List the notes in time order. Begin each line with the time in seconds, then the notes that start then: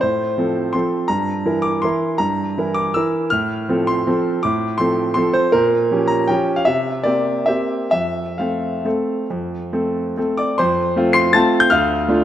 0.01 A2 C5
0.38 F3 C4 A4
0.73 F3 C4 A4 C6
1.08 G2 A#5
1.45 E3 E4 A#4
1.62 D6
1.82 E3 E4 A#4 C6
2.18 G2 A#5
2.58 E3 E4 A#4
2.74 D6
2.94 E3 E4 A#4 E6
3.30 A2 F6
3.69 F3 C4 A4
3.87 C6
4.07 F3 C4 A4
4.43 A2 D6
4.78 F3 C4 A4 C6
5.14 F3 C4 A4 C6
5.33 C5
5.52 A#2 A#4
5.91 F3 C#4 G4
6.08 A#5
6.28 F3 C#4 G4 G5
6.56 F5
6.65 C3 E5
7.03 A#3 C4 G4 D5
7.46 A#3 C4 G4 E5
7.91 F2 E5
8.38 A3 C4 A4 F5
8.85 A3 C4 A4
9.30 F2
9.73 A3 C4 A4
10.17 A3 C4 A4
10.37 D5 D6
10.58 F2 C5 C6
10.96 A3 C4 F4
11.13 C6 C7
11.33 A3 C4 F4 A5 A6
11.60 G6
11.70 D2 F5 F6
12.08 A3 D4 F4